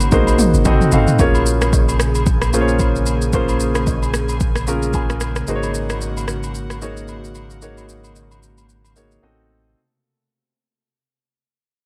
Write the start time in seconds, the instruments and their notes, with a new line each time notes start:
Already playing: log drum bass G#1, analog synth pad C#3 A#3 F#4, grand piano A#3 D#4 F#4 G#4 C5 C#5
0.00 high agogo, shaker
0.12 log drum bass A#1, grand piano A#3 D#4 F#4 G#4 C5, kick, high tom, shaker
0.27 high agogo, shaker
0.39 mid tom, shaker
0.54 log drum bass G#1, shaker
0.65 log drum bass A1, analog synth pad C3 A3 F#4, grand piano C4 D#4 F#4 A4 D#5, kick, mid tom, high agogo, low woodblock, shaker
0.81 mid tom, shaker
0.92 log drum bass G#1, grand piano C4 D#4 F#4 A4 F5, floor tom, high agogo, shaker
1.07 floor tom, shaker
1.19 sub bass A#1, analog synth pad C#3 A#3 G#4, grand piano A#3 C#4 F4 G#4 C#5, kick, shaker
1.35 high agogo, shaker
1.46 shaker
1.61 cross-stick, high agogo, shaker
1.73 kick, low woodblock, shaker
1.89 high agogo, shaker
2.00 cross-stick, shaker
2.15 high agogo, shaker
2.26 kick, shaker
2.42 cross-stick, high agogo, shaker
2.53 grand piano A#3 C#4 F4 G#4 C5, shaker
2.61 grand piano C#5
2.68 shaker
2.79 kick, high agogo, shaker
2.96 shaker
3.06 high agogo, shaker
3.22 shaker
3.33 grand piano A#3 C#4 F4 G#4 C5, kick, shaker
3.49 high agogo, shaker
3.60 shaker
3.75 cross-stick, high agogo, shaker
3.87 kick, low woodblock, shaker
4.03 high agogo, shaker
4.14 cross-stick, shaker
4.29 high agogo, shaker
4.40 kick, shaker
4.56 cross-stick, high agogo, shaker
4.67 grand piano A#3 C#4 F4 G#4 A#4, shaker
4.82 shaker
4.93 grand piano G#5, kick, high agogo, shaker
5.10 cross-stick, shaker
5.21 cross-stick, high agogo, shaker
5.36 cross-stick, shaker
5.47 sub bass G#1, grand piano A#3 D#4 F#4 G#4 C5, analog synth pad A#3 F#4, shaker
5.56 grand piano C#5
5.63 high agogo, shaker
5.74 shaker
5.90 cross-stick, high agogo, shaker
6.01 low woodblock, shaker
6.17 high agogo, shaker
6.28 cross-stick, shaker
6.43 high agogo, shaker
6.55 shaker
6.70 cross-stick, high agogo, shaker
6.82 grand piano A#3 D#4 F#4 G#4 C#5, shaker
6.97 shaker
7.08 high agogo, shaker
7.24 shaker
7.35 high agogo, shaker
7.50 shaker
7.62 grand piano A#3 D#4 F#4 G#4 C#5, shaker
7.78 high agogo, shaker
7.89 shaker
8.04 high agogo, shaker
8.16 low woodblock, shaker
8.31 high agogo, shaker
8.43 shaker
8.58 high agogo, shaker
8.69 shaker
8.85 high agogo, shaker
8.96 grand piano A#3 D#4 F#4 G#4 C#5, shaker
9.11 shaker
9.23 sub bass A1, analog synth pad C3 A3, grand piano C4 D#4 F#4 A4 D#5